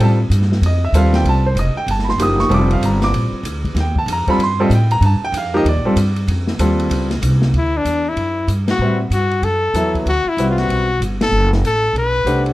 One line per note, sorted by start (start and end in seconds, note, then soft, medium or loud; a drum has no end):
0.00 0.29 A2 loud
0.00 0.17 G3 medium
0.00 0.17 C4 medium
0.00 0.17 F4 medium
0.00 0.18 A4 medium
0.00 ride medium
0.04 0.14 A5 medium
0.30 0.61 G2 loud
0.30 hi-hat pedal medium
0.30 ride medium
0.42 snare soft
0.52 snare soft
0.62 0.92 F2 medium
0.62 ride medium
0.66 0.83 D#5 medium
0.85 0.95 E5 medium
0.93 1.23 D#2 medium
0.93 1.41 G3 medium
0.93 1.41 C4 medium
0.93 1.41 F4 medium
0.93 1.41 A4 medium
0.93 hi-hat pedal medium
0.93 ride medium
0.97 1.14 F5 medium
1.14 1.26 G5 medium
1.14 snare medium
1.14 ride medium
1.24 1.54 C2 medium
1.24 ride medium
1.29 1.46 A5 loud
1.46 1.57 C5 medium
1.55 1.74 F1 medium
1.55 hi-hat pedal medium
1.55 ride medium
1.59 1.77 D#5 medium
1.75 1.88 G5 loud
1.75 muted upright bass stroke soft
1.87 2.17 G1 medium
1.87 ride medium
1.91 2.08 A5 medium
1.99 snare soft
2.05 2.06 B5 medium
2.09 2.20 C6 medium
2.09 snare soft
2.18 2.49 F#1 medium
2.18 2.51 F3 medium
2.18 2.51 A#3 medium
2.18 2.51 D#4 medium
2.18 2.51 G4 medium
2.18 hi-hat pedal medium
2.18 ride medium
2.22 2.40 D#6 loud
2.39 2.51 C#6 loud
2.39 snare soft
2.49 2.81 F1 loud
2.49 3.37 G3 medium
2.49 3.38 C4 medium
2.49 3.38 F4 medium
2.49 3.38 A4 medium
2.49 ride medium
2.54 2.71 D6 loud
2.71 2.83 F5 medium
2.71 ride medium
2.81 3.11 G1 medium
2.81 hi-hat pedal medium
2.81 ride medium
2.85 3.03 A#5 medium
3.02 3.32 D6 loud
3.02 snare medium
3.02 ride soft
3.12 3.31 A#1 medium
3.12 ride medium
3.32 muted upright bass stroke soft
3.43 3.74 D2 loud
3.43 hi-hat pedal medium
3.43 ride medium
3.65 kick medium
3.65 ride medium
3.75 4.05 D#2 loud
3.75 snare soft
3.75 ride medium
3.81 3.98 G5 medium
3.96 4.09 A5 medium
3.96 kick medium
4.06 4.25 F2 loud
4.06 hi-hat pedal medium
4.06 ride medium
4.13 4.29 A#5 loud
4.27 4.39 G3 medium
4.27 4.39 C4 medium
4.27 4.39 F4 medium
4.27 4.39 A4 medium
4.27 4.40 B5 loud
4.27 muted upright bass stroke soft
4.27 kick medium
4.27 ride soft
4.38 4.69 G2 medium
4.38 ride medium
4.43 4.61 C6 loud
4.60 4.70 G3 medium
4.60 4.70 C4 medium
4.60 4.70 F4 medium
4.60 4.70 A4 loud
4.60 4.72 D#5 medium
4.70 5.00 A2 loud
4.70 hi-hat pedal medium
4.70 ride medium
4.75 4.92 G5 medium
4.91 5.03 A#5 loud
4.91 ride medium
5.01 5.20 G2 loud
5.01 ride medium
5.05 5.23 A5 medium
5.25 5.35 G5 loud
5.32 5.64 F2 loud
5.32 hi-hat pedal medium
5.32 ride medium
5.38 5.55 F5 medium
5.54 5.64 F3 medium
5.54 5.64 A#3 medium
5.54 5.65 D#4 medium
5.54 5.64 G4 medium
5.54 5.67 D#5 loud
5.65 5.77 D#2 medium
5.65 ride medium
5.69 6.26 D5 medium
5.75 5.84 A#1 medium
5.85 5.95 G1 medium
5.85 5.96 G3 medium
5.85 5.96 C4 medium
5.85 5.96 F4 medium
5.85 5.96 A4 medium
5.96 6.27 G2 loud
5.96 hi-hat pedal medium
5.96 ride medium
6.16 ride medium
6.28 6.58 F2 loud
6.28 ride medium
6.47 snare soft
6.59 6.89 D#2 loud
6.59 7.07 G3 medium
6.59 7.07 C4 medium
6.59 7.07 F4 medium
6.59 7.07 A4 medium
6.59 hi-hat pedal medium
6.59 ride medium
6.80 ride soft
6.90 7.21 C#2 loud
6.90 ride medium
7.11 snare soft
7.11 ride medium
7.22 7.53 C2 loud
7.22 hi-hat pedal medium
7.22 ride medium
7.42 snare medium
7.53 7.84 D2 medium
7.53 ride medium
7.57 7.78 E4 medium
7.77 8.10 D4 medium
7.85 8.16 E2 medium
7.85 hi-hat pedal medium
7.85 ride medium
8.08 8.50 E4 medium
8.16 8.47 F#2 medium
8.16 ride medium
8.47 8.78 G2 medium
8.47 hi-hat pedal soft
8.47 ride medium
8.68 8.99 F#4 medium
8.68 snare medium
8.68 ride medium
8.79 9.10 A2 medium
8.79 8.98 G3 medium
8.79 8.98 C4 medium
8.79 8.98 F#4 medium
8.79 8.98 B4 soft
8.79 8.99 E5 medium
9.10 9.41 G2 medium
9.10 9.45 F#4 medium
9.10 hi-hat pedal soft
9.10 ride medium
9.31 ride soft
9.42 9.73 F#2 medium
9.42 9.95 A4 medium
9.42 ride medium
9.74 10.05 E2 medium
9.74 10.06 F#3 medium
9.74 10.06 B3 medium
9.74 10.07 E4 medium
9.74 10.06 A4 medium
9.74 10.06 E5 medium
9.74 hi-hat pedal medium
9.74 ride medium
9.95 kick soft
9.95 ride soft
10.06 10.24 D2 medium
10.06 10.30 F#4 medium
10.06 ride medium
10.25 10.50 E4 medium
10.25 muted upright bass stroke soft
10.37 10.68 C2 medium
10.37 10.85 G3 medium
10.37 10.85 C4 medium
10.37 10.86 F#4 medium
10.37 10.86 B4 medium
10.37 10.86 E5 medium
10.37 hi-hat pedal soft
10.37 ride medium
10.50 10.60 F4 medium
10.58 11.01 F#4 medium
10.58 snare soft
10.58 ride soft
10.69 10.99 B1 medium
10.69 ride medium
11.00 11.30 G1 medium
11.00 hi-hat pedal medium
11.00 ride medium
11.21 11.51 A4 medium
11.21 snare medium
11.21 ride medium
11.31 11.61 F#1 medium
11.53 snare medium
11.53 ride soft
11.62 11.93 A1 medium
11.62 hi-hat pedal medium
11.62 ride medium
11.66 11.94 A4 medium
11.93 12.24 B1 medium
11.93 ride medium
11.98 12.44 B4 medium
12.25 12.53 C2 medium
12.25 12.53 A3 medium
12.25 12.53 D4 medium
12.25 12.53 G4 medium
12.25 12.53 C5 medium
12.25 12.53 F#5 medium
12.25 hi-hat pedal medium
12.25 ride medium
12.46 ride soft